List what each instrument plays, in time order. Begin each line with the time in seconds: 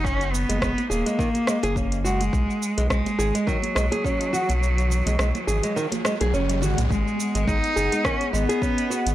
Already playing: sub bass F#1
0.04 cello C#4, kick, shaker
0.21 closed hi-hat, shaker
0.33 cello B3, shaker
0.49 sub bass F#1, nylon-string guitar G#3, closed hi-hat, high conga, shaker
0.61 sub bass F#1, nylon-string guitar G#3, kick, cross-stick, shaker
0.78 closed hi-hat, muted conga, shaker
0.90 sub bass D#1, cello A#3, nylon-string guitar G#4, shaker
1.06 nylon-string guitar G#3, closed hi-hat, shaker
1.19 nylon-string guitar D#3, kick, shaker
1.34 closed hi-hat, muted conga, high conga, shaker
1.47 nylon-string guitar G#3, cross-stick, shaker
1.63 sub bass F#1, nylon-string guitar G#4, closed hi-hat, muted conga, shaker
1.76 nylon-string guitar C#4, kick, shaker
1.92 closed hi-hat, shaker
2.04 cello G#3, nylon-string guitar F#4, shaker
2.20 closed hi-hat, muted conga, shaker
2.33 sub bass B1, kick, riser, shaker
2.50 shaker
2.63 shaker
2.78 sub bass B1, nylon-string guitar G#3, closed hi-hat, shaker
2.90 sub bass B1, cello G#3, nylon-string guitar G#3, kick, cross-stick, shaker
3.06 closed hi-hat, muted conga, shaker
3.19 sub bass G#1, nylon-string guitar G#4, shaker
3.35 nylon-string guitar G#3, closed hi-hat, shaker
3.47 nylon-string guitar D#3, cello F#3, kick, shaker
3.62 closed hi-hat, high conga, shaker
3.75 sub bass B1, nylon-string guitar G#3, cross-stick, shaker
3.91 nylon-string guitar G#4, closed hi-hat, high conga, shaker
4.04 nylon-string guitar C#4, kick, shaker
4.21 closed hi-hat, shaker
4.33 nylon-string guitar F#4, low conga, shaker
4.49 sub bass B1, closed hi-hat, muted conga, shaker
4.63 shaker
4.78 closed hi-hat, shaker
4.90 low conga, shaker
5.06 sub bass B1, nylon-string guitar G#3, closed hi-hat, high conga, low conga, shaker
5.19 sub bass B1, nylon-string guitar G#3, cross-stick, shaker
5.35 closed hi-hat, muted conga, shaker
5.47 sub bass G#1, nylon-string guitar G#4, shaker
5.63 nylon-string guitar G#3, closed hi-hat, shaker
5.76 nylon-string guitar D#3, shaker
5.92 closed hi-hat, muted conga, high conga, shaker
6.05 nylon-string guitar G#3, cross-stick, shaker
6.21 sub bass B1, nylon-string guitar G#4, closed hi-hat, muted conga, shaker
6.33 sub bass F#1, nylon-string guitar C#4, high tom, shaker
6.49 closed hi-hat, high tom, shaker
6.61 sub bass G#1, nylon-string guitar F#4, mid tom, low conga, shaker
6.78 sub bass B1, closed hi-hat, mid tom, muted conga, shaker
6.90 sub bass G#1, cello G#3, ambient pad B3 G#4 D#5 F#5, kick, shaker
7.08 shaker
7.20 shaker
7.35 sub bass G#1, nylon-string guitar G#3, closed hi-hat, shaker
7.48 sub bass G#1, nylon-string guitar G#3, cello D#4, kick, shaker
7.64 closed hi-hat, shaker
7.76 sub bass F#1, nylon-string guitar G#4, shaker
7.92 nylon-string guitar G#3, closed hi-hat, shaker
8.05 nylon-string guitar D#3, cello C#4, kick, cross-stick, shaker
8.21 closed hi-hat, shaker
8.33 sub bass G#1, nylon-string guitar G#3, cello B3, shaker
8.49 nylon-string guitar G#4, closed hi-hat, shaker
8.62 nylon-string guitar C#4, kick, shaker
8.78 closed hi-hat, shaker
8.90 nylon-string guitar F#4, shaker
9.06 sub bass G#1, closed hi-hat, shaker